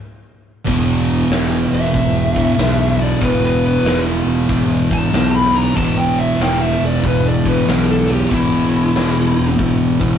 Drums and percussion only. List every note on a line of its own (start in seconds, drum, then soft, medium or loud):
0.67 kick loud
0.67 crash loud
1.30 snare loud
1.30 open hi-hat medium
1.85 snare soft
1.94 kick loud
1.94 open hi-hat medium
2.36 kick medium
2.58 snare loud
2.58 open hi-hat medium
3.21 kick loud
3.21 open hi-hat medium
3.85 snare loud
3.85 open hi-hat medium
4.49 kick loud
4.49 open hi-hat medium
4.91 kick loud
5.13 snare loud
5.13 open hi-hat medium
5.77 kick loud
5.77 open hi-hat medium
6.40 snare loud
6.40 open hi-hat medium
6.95 snare soft
7.03 kick loud
7.03 open hi-hat medium
7.46 kick loud
7.67 snare loud
7.67 open hi-hat medium
8.31 kick loud
8.31 open hi-hat medium
8.95 snare loud
8.95 open hi-hat medium
9.58 kick loud
9.58 open hi-hat medium
10.01 kick loud